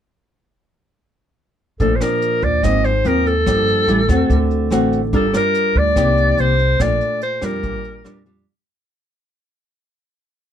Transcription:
1.80 A#1 A#2 F3 A3 D4 A4, kick, closed hi-hat
1.95 C5
2.01 F3 D4 A#4, cross-stick, closed hi-hat
2.22 closed hi-hat
2.42 D#2 D5, kick, closed hi-hat
2.63 G#1 G#2 F3 A#3 C4 D#5, kick, cross-stick, closed hi-hat
2.84 C5, closed hi-hat
3.05 D#2 F3 A#3 C4 A#4, closed hi-hat
3.26 A4, closed hi-hat
3.46 G1 G2 F3 A#3 D4, kick, cross-stick, closed hi-hat
3.68 closed hi-hat
3.88 A1 G3 C#4 E4, closed hi-hat
4.09 E2 A3 C4 F#4, kick, cross-stick
4.30 D2 D3, kick, closed hi-hat
4.51 closed hi-hat
4.70 A1 A3 C4 F#4, cross-stick, closed hi-hat
4.92 closed hi-hat
5.13 G1 G3 D4 F4 A4 A#4, kick, closed hi-hat
5.34 D4 F4 A#4, cross-stick, closed hi-hat
5.54 closed hi-hat
5.75 D2 D5, kick, closed hi-hat
5.96 C2 C3 A#3 D#4 G4, kick, cross-stick, closed hi-hat
6.17 closed hi-hat
6.37 C2 C5, closed hi-hat
6.59 closed hi-hat
6.80 A#1 A#2 A3 D4 F4 D5, kick, cross-stick, closed hi-hat
7.01 closed hi-hat
7.21 C5, closed hi-hat
7.42 F2 G3 D4 F4 A#4, cross-stick, closed hi-hat
7.63 A#1 A#2, kick, closed hi-hat
7.84 closed hi-hat
8.04 F2 G3 D4 F4, cross-stick, closed hi-hat
8.26 G3 D4 F4, closed hi-hat

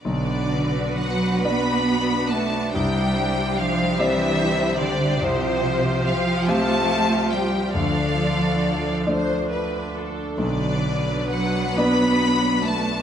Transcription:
0.03 B1 D3 B3 D4 F#4 B4 D5
0.97 F#3 F#5
1.44 B3 D4 B4 D5 B5
2.30 A3 A5
2.73 C2 G3 G4 C5 G5
3.58 F3 F5
3.99 E3 C4 G4 D5 E5
4.79 D3 D5
5.21 C2 C3 F3 F4 C5
6.06 F3 F5
6.48 A3 C4 G4 F5 A5
7.31 G3 G5
7.74 D2 F3 D4 A4 D5 F5
9.06 A3 D4 C5 D5
9.52 B4
9.97 A4
10.38 B1 D3 B4 D5
10.42 F#3
11.32 F#3 F#5
11.77 B3 D4 D5 B5
12.65 A3 A5

